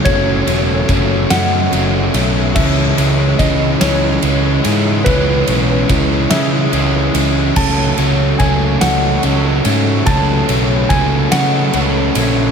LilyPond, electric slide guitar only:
\new Staff \with { instrumentName = "Electric slide guitar" } { \time 6/8 \key fis \dorian \tempo 4. = 48 cis''4. fis''4 r8 | e''4 dis''8 cis''4. | b'4. e''4 r8 | a''4 gis''8 fis''4. |
a''4 gis''8 fis''4. | }